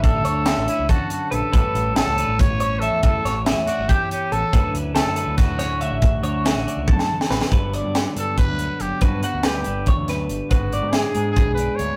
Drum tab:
HH |x-x-x-x-x-x-x-|x-x-x-x-x-x-x-|x-x-x-x-x-x-x-|x-x-x-x-x-x-x-|
SD |----o---------|----o---------|--o-o---------|----o---o-o---|
T1 |--------------|--------------|--------------|--------------|
BD |o-------o-----|o-------o-----|o-------o-----|o-------o-----|

HH |x-x-x-x-------|x-x-x-x-x-x-x-|x-x-x-x-x-x-x-|x-x-x-x-x-x-x-|
SD |----o----o-ooo|----o---------|----o-----o---|----o---------|
T1 |--------o-----|--------------|--------------|--------------|
BD |o-------o-----|o-------o-----|o-------o-----|o-------o-----|